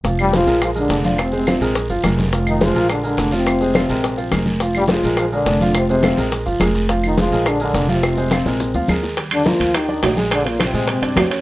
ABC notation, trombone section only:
X:1
M:4/4
L:1/8
Q:1/4=210
K:Fdor
V:1 name="Trombone section" clef=bass
z [G,,G,] [F,F]2 [F,F] [D,D]3 | [C,C] [C,C]3 z4 | z [E,E] [F,F]2 [D,D] [D,D]2 [C,C]- | [C,C]6- [C,C] z |
z [G,,G,] [F,F]2 [F,F] [D,D]3 | [C,C] [C,C]3 z4 | z [E,E] [F,F]2 [D,D] [D,D]2 [C,C]- | [C,C]6- [C,C] z |
z [D,D] [F,F]2 [E,E]3 z | [D,D] [B,,B,] [C,C]2 [C,C]3 z |]